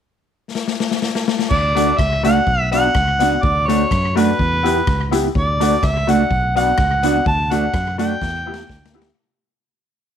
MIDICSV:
0, 0, Header, 1, 7, 480
1, 0, Start_track
1, 0, Key_signature, 2, "major"
1, 0, Tempo, 478851
1, 1513, Time_signature, 4, 2, 24, 8
1, 10193, End_track
2, 0, Start_track
2, 0, Title_t, "Harmonica"
2, 0, Program_c, 0, 22
2, 1510, Note_on_c, 0, 74, 105
2, 1982, Note_on_c, 0, 76, 104
2, 1997, Note_off_c, 0, 74, 0
2, 2242, Note_off_c, 0, 76, 0
2, 2249, Note_on_c, 0, 78, 109
2, 2696, Note_off_c, 0, 78, 0
2, 2724, Note_on_c, 0, 78, 108
2, 3436, Note_on_c, 0, 74, 92
2, 3451, Note_off_c, 0, 78, 0
2, 3681, Note_on_c, 0, 73, 82
2, 3696, Note_off_c, 0, 74, 0
2, 4167, Note_off_c, 0, 73, 0
2, 4175, Note_on_c, 0, 71, 87
2, 5094, Note_off_c, 0, 71, 0
2, 5384, Note_on_c, 0, 74, 82
2, 5866, Note_on_c, 0, 76, 91
2, 5881, Note_off_c, 0, 74, 0
2, 6114, Note_on_c, 0, 78, 96
2, 6129, Note_off_c, 0, 76, 0
2, 6575, Note_off_c, 0, 78, 0
2, 6581, Note_on_c, 0, 78, 86
2, 7242, Note_off_c, 0, 78, 0
2, 7288, Note_on_c, 0, 81, 104
2, 7545, Note_on_c, 0, 78, 98
2, 7560, Note_off_c, 0, 81, 0
2, 8005, Note_off_c, 0, 78, 0
2, 8011, Note_on_c, 0, 79, 100
2, 8928, Note_off_c, 0, 79, 0
2, 10193, End_track
3, 0, Start_track
3, 0, Title_t, "Clean electric guitar"
3, 0, Program_c, 1, 27
3, 1766, Note_on_c, 1, 57, 78
3, 1779, Note_on_c, 1, 62, 93
3, 1788, Note_on_c, 1, 66, 93
3, 1887, Note_off_c, 1, 57, 0
3, 1893, Note_off_c, 1, 62, 0
3, 1897, Note_off_c, 1, 66, 0
3, 2253, Note_on_c, 1, 57, 82
3, 2260, Note_on_c, 1, 62, 87
3, 2271, Note_on_c, 1, 66, 86
3, 2370, Note_off_c, 1, 57, 0
3, 2374, Note_off_c, 1, 62, 0
3, 2379, Note_off_c, 1, 66, 0
3, 2736, Note_on_c, 1, 59, 80
3, 2747, Note_on_c, 1, 62, 82
3, 2752, Note_on_c, 1, 66, 92
3, 2852, Note_off_c, 1, 59, 0
3, 2858, Note_off_c, 1, 62, 0
3, 2860, Note_off_c, 1, 66, 0
3, 3219, Note_on_c, 1, 59, 87
3, 3232, Note_on_c, 1, 62, 81
3, 3236, Note_on_c, 1, 66, 88
3, 3334, Note_off_c, 1, 59, 0
3, 3341, Note_off_c, 1, 62, 0
3, 3343, Note_off_c, 1, 66, 0
3, 3691, Note_on_c, 1, 57, 84
3, 3702, Note_on_c, 1, 62, 81
3, 3711, Note_on_c, 1, 66, 88
3, 3811, Note_off_c, 1, 57, 0
3, 3816, Note_off_c, 1, 62, 0
3, 3821, Note_off_c, 1, 66, 0
3, 4175, Note_on_c, 1, 57, 83
3, 4185, Note_on_c, 1, 62, 91
3, 4190, Note_on_c, 1, 66, 89
3, 4293, Note_off_c, 1, 57, 0
3, 4298, Note_off_c, 1, 62, 0
3, 4301, Note_off_c, 1, 66, 0
3, 4661, Note_on_c, 1, 59, 72
3, 4669, Note_on_c, 1, 64, 84
3, 4676, Note_on_c, 1, 67, 84
3, 4777, Note_off_c, 1, 59, 0
3, 4781, Note_off_c, 1, 64, 0
3, 4784, Note_off_c, 1, 67, 0
3, 5130, Note_on_c, 1, 59, 78
3, 5140, Note_on_c, 1, 64, 84
3, 5148, Note_on_c, 1, 67, 81
3, 5252, Note_off_c, 1, 59, 0
3, 5257, Note_off_c, 1, 64, 0
3, 5261, Note_off_c, 1, 67, 0
3, 5613, Note_on_c, 1, 57, 84
3, 5622, Note_on_c, 1, 62, 87
3, 5631, Note_on_c, 1, 66, 89
3, 5733, Note_off_c, 1, 57, 0
3, 5738, Note_off_c, 1, 62, 0
3, 5742, Note_off_c, 1, 66, 0
3, 6096, Note_on_c, 1, 57, 84
3, 6105, Note_on_c, 1, 62, 83
3, 6116, Note_on_c, 1, 66, 95
3, 6215, Note_off_c, 1, 57, 0
3, 6219, Note_off_c, 1, 62, 0
3, 6224, Note_off_c, 1, 66, 0
3, 6576, Note_on_c, 1, 59, 69
3, 6587, Note_on_c, 1, 62, 79
3, 6596, Note_on_c, 1, 66, 82
3, 6695, Note_off_c, 1, 59, 0
3, 6700, Note_off_c, 1, 62, 0
3, 6704, Note_off_c, 1, 66, 0
3, 7053, Note_on_c, 1, 59, 78
3, 7060, Note_on_c, 1, 62, 92
3, 7070, Note_on_c, 1, 66, 90
3, 7173, Note_off_c, 1, 59, 0
3, 7176, Note_off_c, 1, 62, 0
3, 7181, Note_off_c, 1, 66, 0
3, 7533, Note_on_c, 1, 57, 88
3, 7539, Note_on_c, 1, 62, 89
3, 7550, Note_on_c, 1, 66, 102
3, 7652, Note_off_c, 1, 57, 0
3, 7655, Note_off_c, 1, 62, 0
3, 7661, Note_off_c, 1, 66, 0
3, 8006, Note_on_c, 1, 57, 80
3, 8016, Note_on_c, 1, 62, 83
3, 8027, Note_on_c, 1, 66, 96
3, 8128, Note_off_c, 1, 57, 0
3, 8134, Note_off_c, 1, 62, 0
3, 8139, Note_off_c, 1, 66, 0
3, 8489, Note_on_c, 1, 59, 74
3, 8502, Note_on_c, 1, 64, 90
3, 8511, Note_on_c, 1, 67, 94
3, 8609, Note_off_c, 1, 59, 0
3, 8616, Note_off_c, 1, 64, 0
3, 8620, Note_off_c, 1, 67, 0
3, 8955, Note_on_c, 1, 59, 84
3, 8970, Note_on_c, 1, 64, 89
3, 8979, Note_on_c, 1, 67, 103
3, 9081, Note_off_c, 1, 59, 0
3, 9089, Note_off_c, 1, 64, 0
3, 9094, Note_off_c, 1, 67, 0
3, 10193, End_track
4, 0, Start_track
4, 0, Title_t, "Upright piano"
4, 0, Program_c, 2, 0
4, 1754, Note_on_c, 2, 57, 86
4, 1762, Note_on_c, 2, 62, 77
4, 1766, Note_on_c, 2, 66, 92
4, 1884, Note_off_c, 2, 57, 0
4, 1887, Note_off_c, 2, 62, 0
4, 1889, Note_off_c, 2, 66, 0
4, 2238, Note_on_c, 2, 57, 88
4, 2243, Note_on_c, 2, 62, 82
4, 2250, Note_on_c, 2, 66, 107
4, 2366, Note_off_c, 2, 57, 0
4, 2368, Note_off_c, 2, 62, 0
4, 2371, Note_off_c, 2, 66, 0
4, 2721, Note_on_c, 2, 59, 91
4, 2727, Note_on_c, 2, 62, 85
4, 2733, Note_on_c, 2, 66, 97
4, 2847, Note_off_c, 2, 59, 0
4, 2851, Note_off_c, 2, 62, 0
4, 2854, Note_off_c, 2, 66, 0
4, 3200, Note_on_c, 2, 59, 84
4, 3205, Note_on_c, 2, 62, 75
4, 3215, Note_on_c, 2, 66, 103
4, 3328, Note_off_c, 2, 59, 0
4, 3330, Note_off_c, 2, 62, 0
4, 3335, Note_off_c, 2, 66, 0
4, 3689, Note_on_c, 2, 57, 91
4, 3696, Note_on_c, 2, 62, 80
4, 3700, Note_on_c, 2, 66, 86
4, 3813, Note_off_c, 2, 57, 0
4, 3816, Note_off_c, 2, 62, 0
4, 3818, Note_off_c, 2, 66, 0
4, 4164, Note_on_c, 2, 57, 97
4, 4172, Note_on_c, 2, 62, 77
4, 4176, Note_on_c, 2, 66, 95
4, 4291, Note_off_c, 2, 57, 0
4, 4295, Note_off_c, 2, 62, 0
4, 4296, Note_off_c, 2, 66, 0
4, 4643, Note_on_c, 2, 59, 89
4, 4647, Note_on_c, 2, 64, 76
4, 4656, Note_on_c, 2, 67, 94
4, 4770, Note_off_c, 2, 59, 0
4, 4772, Note_off_c, 2, 64, 0
4, 4777, Note_off_c, 2, 67, 0
4, 5126, Note_on_c, 2, 59, 85
4, 5131, Note_on_c, 2, 64, 81
4, 5137, Note_on_c, 2, 67, 101
4, 5252, Note_off_c, 2, 59, 0
4, 5255, Note_off_c, 2, 64, 0
4, 5258, Note_off_c, 2, 67, 0
4, 5616, Note_on_c, 2, 57, 80
4, 5621, Note_on_c, 2, 62, 79
4, 5629, Note_on_c, 2, 66, 90
4, 5738, Note_off_c, 2, 57, 0
4, 5740, Note_off_c, 2, 62, 0
4, 5744, Note_off_c, 2, 66, 0
4, 6087, Note_on_c, 2, 57, 82
4, 6095, Note_on_c, 2, 62, 82
4, 6099, Note_on_c, 2, 66, 94
4, 6213, Note_off_c, 2, 57, 0
4, 6217, Note_off_c, 2, 62, 0
4, 6219, Note_off_c, 2, 66, 0
4, 6569, Note_on_c, 2, 59, 81
4, 6575, Note_on_c, 2, 62, 80
4, 6578, Note_on_c, 2, 66, 96
4, 6694, Note_off_c, 2, 59, 0
4, 6697, Note_off_c, 2, 62, 0
4, 6698, Note_off_c, 2, 66, 0
4, 7046, Note_on_c, 2, 59, 87
4, 7053, Note_on_c, 2, 62, 75
4, 7058, Note_on_c, 2, 66, 94
4, 7172, Note_off_c, 2, 59, 0
4, 7176, Note_off_c, 2, 62, 0
4, 7178, Note_off_c, 2, 66, 0
4, 7528, Note_on_c, 2, 57, 83
4, 7534, Note_on_c, 2, 62, 77
4, 7538, Note_on_c, 2, 66, 91
4, 7653, Note_off_c, 2, 57, 0
4, 7655, Note_off_c, 2, 62, 0
4, 7657, Note_off_c, 2, 66, 0
4, 8000, Note_on_c, 2, 57, 95
4, 8008, Note_on_c, 2, 62, 82
4, 8012, Note_on_c, 2, 66, 99
4, 8128, Note_off_c, 2, 57, 0
4, 8132, Note_off_c, 2, 62, 0
4, 8134, Note_off_c, 2, 66, 0
4, 8478, Note_on_c, 2, 59, 79
4, 8487, Note_on_c, 2, 64, 84
4, 8495, Note_on_c, 2, 67, 95
4, 8607, Note_off_c, 2, 59, 0
4, 8611, Note_off_c, 2, 64, 0
4, 8615, Note_off_c, 2, 67, 0
4, 8959, Note_on_c, 2, 59, 79
4, 8967, Note_on_c, 2, 64, 79
4, 8971, Note_on_c, 2, 67, 94
4, 9086, Note_off_c, 2, 59, 0
4, 9090, Note_off_c, 2, 64, 0
4, 9092, Note_off_c, 2, 67, 0
4, 10193, End_track
5, 0, Start_track
5, 0, Title_t, "Fingered electric bass"
5, 0, Program_c, 3, 33
5, 1512, Note_on_c, 3, 38, 108
5, 1921, Note_off_c, 3, 38, 0
5, 1992, Note_on_c, 3, 37, 82
5, 2401, Note_off_c, 3, 37, 0
5, 2477, Note_on_c, 3, 35, 95
5, 2884, Note_off_c, 3, 35, 0
5, 2957, Note_on_c, 3, 37, 84
5, 3365, Note_off_c, 3, 37, 0
5, 3443, Note_on_c, 3, 38, 116
5, 3849, Note_off_c, 3, 38, 0
5, 3926, Note_on_c, 3, 42, 106
5, 4331, Note_off_c, 3, 42, 0
5, 4409, Note_on_c, 3, 40, 102
5, 4813, Note_off_c, 3, 40, 0
5, 4884, Note_on_c, 3, 37, 86
5, 5290, Note_off_c, 3, 37, 0
5, 5368, Note_on_c, 3, 38, 113
5, 5773, Note_off_c, 3, 38, 0
5, 5845, Note_on_c, 3, 37, 88
5, 6250, Note_off_c, 3, 37, 0
5, 6325, Note_on_c, 3, 35, 103
5, 6731, Note_off_c, 3, 35, 0
5, 6800, Note_on_c, 3, 37, 88
5, 7207, Note_off_c, 3, 37, 0
5, 7283, Note_on_c, 3, 38, 106
5, 7688, Note_off_c, 3, 38, 0
5, 7756, Note_on_c, 3, 42, 100
5, 8164, Note_off_c, 3, 42, 0
5, 8239, Note_on_c, 3, 40, 100
5, 8645, Note_off_c, 3, 40, 0
5, 8722, Note_on_c, 3, 38, 92
5, 9126, Note_off_c, 3, 38, 0
5, 10193, End_track
6, 0, Start_track
6, 0, Title_t, "Muted clean electric guitar strokes"
6, 4401, Note_on_c, 9, 29, 43
6, 4502, Note_off_c, 9, 29, 0
6, 4891, Note_on_c, 9, 29, 37
6, 4991, Note_off_c, 9, 29, 0
6, 8239, Note_on_c, 9, 29, 36
6, 8339, Note_off_c, 9, 29, 0
6, 8715, Note_on_c, 9, 29, 41
6, 8815, Note_off_c, 9, 29, 0
6, 10193, End_track
7, 0, Start_track
7, 0, Title_t, "Drums"
7, 553, Note_on_c, 9, 38, 50
7, 653, Note_off_c, 9, 38, 0
7, 678, Note_on_c, 9, 38, 50
7, 778, Note_off_c, 9, 38, 0
7, 804, Note_on_c, 9, 38, 76
7, 904, Note_off_c, 9, 38, 0
7, 915, Note_on_c, 9, 38, 67
7, 1015, Note_off_c, 9, 38, 0
7, 1024, Note_on_c, 9, 38, 76
7, 1124, Note_off_c, 9, 38, 0
7, 1156, Note_on_c, 9, 38, 75
7, 1256, Note_off_c, 9, 38, 0
7, 1281, Note_on_c, 9, 38, 103
7, 1381, Note_off_c, 9, 38, 0
7, 1393, Note_on_c, 9, 38, 89
7, 1493, Note_off_c, 9, 38, 0
7, 1509, Note_on_c, 9, 49, 94
7, 1511, Note_on_c, 9, 36, 106
7, 1609, Note_off_c, 9, 49, 0
7, 1611, Note_off_c, 9, 36, 0
7, 1769, Note_on_c, 9, 42, 90
7, 1869, Note_off_c, 9, 42, 0
7, 1990, Note_on_c, 9, 36, 109
7, 1998, Note_on_c, 9, 37, 116
7, 2091, Note_off_c, 9, 36, 0
7, 2098, Note_off_c, 9, 37, 0
7, 2250, Note_on_c, 9, 42, 100
7, 2350, Note_off_c, 9, 42, 0
7, 2473, Note_on_c, 9, 36, 92
7, 2574, Note_off_c, 9, 36, 0
7, 2731, Note_on_c, 9, 42, 85
7, 2832, Note_off_c, 9, 42, 0
7, 2954, Note_on_c, 9, 37, 100
7, 2956, Note_on_c, 9, 36, 101
7, 3055, Note_off_c, 9, 37, 0
7, 3057, Note_off_c, 9, 36, 0
7, 3209, Note_on_c, 9, 42, 96
7, 3310, Note_off_c, 9, 42, 0
7, 3441, Note_on_c, 9, 36, 116
7, 3541, Note_off_c, 9, 36, 0
7, 3702, Note_on_c, 9, 42, 89
7, 3802, Note_off_c, 9, 42, 0
7, 3920, Note_on_c, 9, 36, 113
7, 3927, Note_on_c, 9, 37, 114
7, 4020, Note_off_c, 9, 36, 0
7, 4028, Note_off_c, 9, 37, 0
7, 4181, Note_on_c, 9, 42, 95
7, 4281, Note_off_c, 9, 42, 0
7, 4404, Note_on_c, 9, 36, 100
7, 4504, Note_off_c, 9, 36, 0
7, 4667, Note_on_c, 9, 42, 84
7, 4767, Note_off_c, 9, 42, 0
7, 4884, Note_on_c, 9, 36, 118
7, 4885, Note_on_c, 9, 37, 107
7, 4985, Note_off_c, 9, 36, 0
7, 4985, Note_off_c, 9, 37, 0
7, 5138, Note_on_c, 9, 42, 102
7, 5238, Note_off_c, 9, 42, 0
7, 5365, Note_on_c, 9, 36, 103
7, 5466, Note_off_c, 9, 36, 0
7, 5624, Note_on_c, 9, 42, 100
7, 5724, Note_off_c, 9, 42, 0
7, 5842, Note_on_c, 9, 36, 118
7, 5849, Note_on_c, 9, 37, 117
7, 5943, Note_off_c, 9, 36, 0
7, 5949, Note_off_c, 9, 37, 0
7, 6100, Note_on_c, 9, 42, 103
7, 6201, Note_off_c, 9, 42, 0
7, 6321, Note_on_c, 9, 36, 93
7, 6422, Note_off_c, 9, 36, 0
7, 6583, Note_on_c, 9, 42, 86
7, 6683, Note_off_c, 9, 42, 0
7, 6793, Note_on_c, 9, 37, 98
7, 6799, Note_on_c, 9, 36, 114
7, 6893, Note_off_c, 9, 37, 0
7, 6900, Note_off_c, 9, 36, 0
7, 7049, Note_on_c, 9, 42, 98
7, 7149, Note_off_c, 9, 42, 0
7, 7279, Note_on_c, 9, 36, 120
7, 7379, Note_off_c, 9, 36, 0
7, 7532, Note_on_c, 9, 42, 89
7, 7632, Note_off_c, 9, 42, 0
7, 7754, Note_on_c, 9, 36, 122
7, 7758, Note_on_c, 9, 37, 110
7, 7855, Note_off_c, 9, 36, 0
7, 7859, Note_off_c, 9, 37, 0
7, 8012, Note_on_c, 9, 42, 100
7, 8112, Note_off_c, 9, 42, 0
7, 8235, Note_on_c, 9, 36, 97
7, 8235, Note_on_c, 9, 38, 48
7, 8335, Note_off_c, 9, 36, 0
7, 8335, Note_off_c, 9, 38, 0
7, 8559, Note_on_c, 9, 38, 74
7, 8659, Note_off_c, 9, 38, 0
7, 8715, Note_on_c, 9, 36, 116
7, 8717, Note_on_c, 9, 38, 62
7, 8816, Note_off_c, 9, 36, 0
7, 8817, Note_off_c, 9, 38, 0
7, 8877, Note_on_c, 9, 38, 85
7, 8978, Note_off_c, 9, 38, 0
7, 9039, Note_on_c, 9, 38, 97
7, 9139, Note_off_c, 9, 38, 0
7, 10193, End_track
0, 0, End_of_file